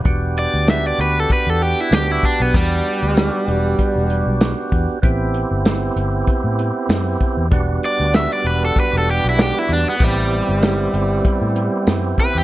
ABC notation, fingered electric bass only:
X:1
M:4/4
L:1/16
Q:"Swing 16ths" 1/4=96
K:Em
V:1 name="Fingered electric bass" clef=bass
E,,,3 D,,3 D,,2 z E,,2 z D,,2 z B,,, | E,,2 z D,,2 z E,,,2 z E,,,2 B,,,2 z E,, z | A,,,3 G,,,3 G,,,2 z A,,2 z F,,2 z E,, | E,,,2 z D,,2 z E,,,2 z E,,,2 B,,,2 z E,, z |
A,,,3 G,,,3 G,,,2 z A,,2 z F,,2 z E,, |]